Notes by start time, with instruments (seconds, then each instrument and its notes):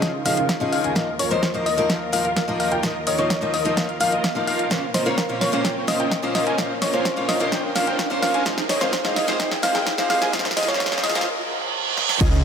Already playing: string section C#3 C#4 D#4 F4 A#4, steel-string acoustic guitar F3 C#4 D#4 G#4, synth pluck D#5, riser
0.02 supersaw synth C#4 D#4 F4 G#4 F5, grand piano F5, kick, snare, closed hi-hat
0.25 steel-string acoustic guitar F3 C#4 D#4 G#4, supersaw synth C#4 D#4 F4 G#4 D#5, grand piano D#5, synth pluck F5, open hi-hat
0.37 supersaw synth C#4 D#4 F4 G#4 F5, grand piano F5, closed hi-hat
0.49 kick, snare, closed hi-hat
0.60 steel-string acoustic guitar F3 C#4 D#4 G#4, supersaw synth C#4 D#4 F4 G#4 D#5, grand piano D#5
0.72 synth pluck F5, open hi-hat
0.84 supersaw synth C#4 D#4 F4 G#4 G#5, grand piano G#5, closed hi-hat
0.95 string section D#2 D#3 A#3, steel-string acoustic guitar F3 A#3 D#4 A#4, supersaw synth F4 A#4 D#5, grand piano D#5, kick, snare, closed hi-hat
1.19 supersaw synth F4 A#4 C#5, grand piano C#5, synth pluck C#5, open hi-hat
1.30 steel-string acoustic guitar F3 A#3 D#4 C5, supersaw synth F4 A#4 D#5, synth pluck C5, grand piano D#5, closed hi-hat
1.43 kick, snare, closed hi-hat
1.54 steel-string acoustic guitar F3 A#3 D#4 C5, supersaw synth F4 A#4 D#5, grand piano D#5, closed hi-hat
1.66 synth pluck D#5, open hi-hat
1.77 steel-string acoustic guitar F3 A#3 D#4 A#4, supersaw synth F4 A#4 D#5, grand piano D#5, closed hi-hat
1.90 supersaw synth F4 A#4 F5, grand piano F5, kick, snare, closed hi-hat
2.12 steel-string acoustic guitar F3 A#3 D#4 A#4, supersaw synth F4 A#4 D#5, grand piano D#5, synth pluck F5, open hi-hat
2.25 supersaw synth F4 A#4 F5, grand piano F5, closed hi-hat
2.36 kick, snare, closed hi-hat
2.48 steel-string acoustic guitar F3 A#3 D#4 A#4, supersaw synth F4 A#4 D#5, grand piano D#5
2.60 synth pluck F5, open hi-hat
2.72 supersaw synth F4 A#4 G5, grand piano G5, closed hi-hat
2.83 steel-string acoustic guitar F3 A#3 D#4 A#4, supersaw synth F4 A#4 D#5, grand piano D#5, kick, snare, closed hi-hat
3.07 supersaw synth F4 A#4 C#5, grand piano C#5, synth pluck D#5, open hi-hat
3.18 steel-string acoustic guitar F3 A#3 D#4 C5, supersaw synth F4 A#4 D#5, synth pluck C#5, grand piano D#5, closed hi-hat
3.30 kick, snare, closed hi-hat
3.41 steel-string acoustic guitar F3 A#3 D#4 C5, supersaw synth F4 A#4 D#5, grand piano D#5, closed hi-hat
3.54 synth pluck D#5, open hi-hat
3.65 steel-string acoustic guitar F3 A#3 D#4 A#4, supersaw synth F4 A#4 D#5, grand piano D#5, closed hi-hat
3.77 supersaw synth F4 F5, grand piano F5, kick, snare, closed hi-hat
3.89 closed hi-hat
4.00 steel-string acoustic guitar F3 A#3 D#4 A#4, supersaw synth F4 A#4 F5, grand piano F5, synth pluck F5, open hi-hat
4.12 supersaw synth F4 A#4 D#5, grand piano D#5, closed hi-hat
4.24 kick, snare, closed hi-hat
4.35 steel-string acoustic guitar F3 A#3 D#4 A#4, supersaw synth F4 A#4 F5, grand piano F5
4.47 supersaw synth F4 A#4 F5, grand piano F5, synth pluck F5, open hi-hat
4.59 closed hi-hat
4.70 steel-string acoustic guitar A#2 A#3 C#4 F4 C5, string section A#2 C#4 F4 A#4, supersaw synth C#4 F4 A#4 C5 F5, kick, snare, closed hi-hat
4.94 supersaw synth C#4 F4 A#4 C5 D#5, synth pluck C5, grand piano D#5, snare, open hi-hat
5.05 steel-string acoustic guitar A#2 A#3 C#4 F4 C#5, supersaw synth C#4 F4 A#4 C5 F5, synth pluck A#4, grand piano F5, closed hi-hat
5.18 kick, snare, closed hi-hat
5.29 steel-string acoustic guitar A#2 A#3 C#4 F4 C#5, supersaw synth C#4 F4 A#4 C5 F5, grand piano F5, closed hi-hat
5.41 synth pluck C#5, snare, open hi-hat
5.52 steel-string acoustic guitar A#2 A#3 C#4 F4 C5, supersaw synth C#4 F4 A#4 C5 F5, grand piano F5, closed hi-hat
5.65 supersaw synth C#4 A#4, grand piano G5, kick, snare, closed hi-hat
5.87 steel-string acoustic guitar A#2 A#3 C#4 F4 C5, supersaw synth C#4 F4 A#4 C5 F5, synth pluck D#5, grand piano F5, snare, open hi-hat
6.00 supersaw synth C#4 F4 A#4 C5 G5, grand piano G5, closed hi-hat
6.11 kick, snare, closed hi-hat
6.22 steel-string acoustic guitar A#2 A#3 C#4 F4 C5, supersaw synth C#4 F4 A#4 C5 F5, grand piano F5
6.35 synth pluck D#5, snare, open hi-hat
6.47 supersaw synth C#4 F4 A#4 C5 G#5, grand piano G#5, closed hi-hat
6.58 steel-string acoustic guitar A#2 A#3 C#4 F4 C5, supersaw synth C#4 F4 A#4 C5 F5, grand piano F5, kick, snare, closed hi-hat
6.82 supersaw synth C#4 F4 A#4 C5 D#5, synth pluck C#5, grand piano D#5, snare, open hi-hat
6.93 steel-string acoustic guitar A#2 A#3 C#4 F4 C#5, supersaw synth C#4 F4 A#4 C5 F5, synth pluck C5, grand piano F5, closed hi-hat
7.05 kick, snare, closed hi-hat
7.16 steel-string acoustic guitar A#2 A#3 C#4 F4 C#5, supersaw synth C#4 F4 A#4 C5 F5, grand piano F5, closed hi-hat
7.29 synth pluck D#5, snare, open hi-hat
7.40 steel-string acoustic guitar A#2 A#3 C#4 F4 C5, supersaw synth C#4 F4 A#4 C5 F5, grand piano F5, closed hi-hat
7.52 supersaw synth C#4 F4 A#4 C5 G5, grand piano G5, kick, snare, closed hi-hat
7.75 steel-string acoustic guitar A#2 A#3 C#4 F4 C5, supersaw synth C#4 F4 A#4 C5 F5, synth pluck F5, grand piano F5, snare, open hi-hat
7.87 supersaw synth C#4 F4 A#4 C5 G5, grand piano G5, closed hi-hat
7.99 kick, snare, closed hi-hat
8.10 steel-string acoustic guitar A#2 A#3 C#4 F4 C5, supersaw synth C#4 F4 A#4 C5 F5, grand piano F5
8.22 synth pluck F5, snare, open hi-hat
8.34 supersaw synth C#4 F4 A#4 C5 G#5, grand piano G#5, closed hi-hat
8.45 steel-string acoustic guitar C3 G#3 C4 F4 C5, string section C3 G#3 G#4, supersaw synth G#4, grand piano F5, kick, snare, closed hi-hat
8.58 snare
8.69 supersaw synth G#4 C5 D#5, synth pluck C#5, grand piano D#5, snare, open hi-hat
8.80 steel-string acoustic guitar C3 G#3 C4 F4 D#5, supersaw synth G#4 C5 F5, synth pluck C5, grand piano F5, snare, closed hi-hat
8.93 kick, snare, closed hi-hat
9.04 steel-string acoustic guitar C3 G#3 C4 F4 D#5, supersaw synth G#4 C5 F5, grand piano F5, snare, closed hi-hat
9.16 synth pluck D#5, snare, open hi-hat
9.27 steel-string acoustic guitar C3 G#3 C4 F4 C5, supersaw synth G#4 C5 F5, grand piano F5, snare, closed hi-hat
9.40 supersaw synth G#4 C5 G5, grand piano G5, kick, snare, closed hi-hat
9.51 snare
9.62 steel-string acoustic guitar C3 G#3 C4 F4 C5, supersaw synth G#4 C5 F5, synth pluck F5, grand piano F5, snare, open hi-hat
9.75 supersaw synth G#4 C5 G5, grand piano G5, snare, closed hi-hat
9.86 kick, snare, closed hi-hat
9.98 steel-string acoustic guitar C3 G#3 C4 F4 C5, supersaw synth G#4 C5 F5, grand piano F5, snare
10.10 synth pluck F5, snare, open hi-hat
10.22 supersaw synth G#4 C5 G#5, grand piano G#5, snare, closed hi-hat
10.32 steel-string acoustic guitar C3 G#3 C4 F4 C5, supersaw synth G#4 C5 F5, string section A#4, grand piano F5, kick, snare, closed hi-hat
10.39 snare
10.45 snare, closed hi-hat
10.51 snare
10.57 supersaw synth G#4 C5 D#5, synth pluck D#5, grand piano D#5, snare, open hi-hat
10.63 snare
10.68 steel-string acoustic guitar C3 G#3 C4 F4 D#5, supersaw synth G#4 C5 F5, synth pluck C#5, grand piano F5, snare, closed hi-hat
10.74 snare
10.80 kick, snare, closed hi-hat
10.86 snare
10.91 steel-string acoustic guitar C3 G#3 C4 F4 D#5, supersaw synth G#4 C5 F5, grand piano F5, snare, closed hi-hat
10.98 snare
11.03 synth pluck D#5, snare, open hi-hat
11.09 snare
11.15 steel-string acoustic guitar C3 G#3 C4 F4 C5, supersaw synth G#4 C5 F5, grand piano F5, snare, closed hi-hat
11.21 snare
11.27 reverse cymbal
11.97 snare
12.09 snare
12.21 detuned saw bass C#2, supersaw synth C#4 D#4 F4 G#4 D#5, grand piano D#5, kick, closed hi-hat, crash, shaker
12.33 shaker